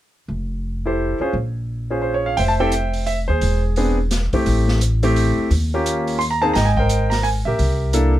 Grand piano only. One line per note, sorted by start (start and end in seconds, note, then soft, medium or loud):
0.86 1.18 E4 soft
0.86 1.18 G4 soft
0.86 1.18 A4 soft
0.86 1.19 C5 medium
1.21 1.32 C#4 medium
1.21 1.32 F4 soft
1.21 1.33 G#4 soft
1.21 1.33 C5 medium
1.90 2.35 C#4 soft
1.90 2.36 F4 soft
1.90 2.36 G#4 soft
1.90 2.00 C5 medium
2.02 2.13 C5 medium
2.14 2.26 C#5 medium
2.26 2.37 F5 medium
2.37 2.61 C5 medium
2.37 2.60 E5 medium
2.37 2.42 G5 medium
2.48 2.53 A5 medium
2.60 2.72 C4 medium
2.60 2.71 E4 medium
2.60 2.72 G4 medium
2.60 2.72 A4 medium
2.60 3.11 C5 medium
2.60 3.05 E5 medium
2.60 3.08 G5 medium
3.07 3.18 E5 medium
3.28 3.74 G#4 soft
3.28 3.61 C5 medium
3.77 3.96 B3 medium
3.77 3.97 C4 medium
3.77 3.97 D4 soft
3.77 3.97 G#4 medium
4.34 4.79 A3 medium
4.34 4.79 C4 soft
4.34 4.79 E4 soft
4.34 4.79 G4 medium
5.03 5.48 A3 medium
5.03 5.48 C4 medium
5.03 5.48 E4 medium
5.03 5.49 G4 medium
5.74 6.18 A#3 medium
5.74 6.18 C#4 medium
5.74 6.19 F4 medium
5.74 6.19 G4 medium
6.19 6.24 C6 medium
6.31 6.43 A#5 medium
6.42 6.54 A#3 medium
6.42 6.54 C4 medium
6.42 6.54 D#4 medium
6.42 6.54 G#4 medium
6.42 6.54 A5 medium
6.54 7.08 D#5 medium
6.54 6.76 G5 medium
6.54 6.65 A#5 medium
6.65 6.70 G#5 medium
6.77 7.29 A#4 medium
6.77 7.28 C5 medium
6.77 7.12 G5 medium
7.10 7.24 A#5 medium
7.23 7.28 G#5 medium
7.45 8.20 G4 medium
7.45 8.20 A#4 soft
7.45 8.20 E5 medium
7.93 8.13 A#3 medium
7.93 8.13 D4 medium
7.93 8.13 E4 medium
7.93 8.13 A4 medium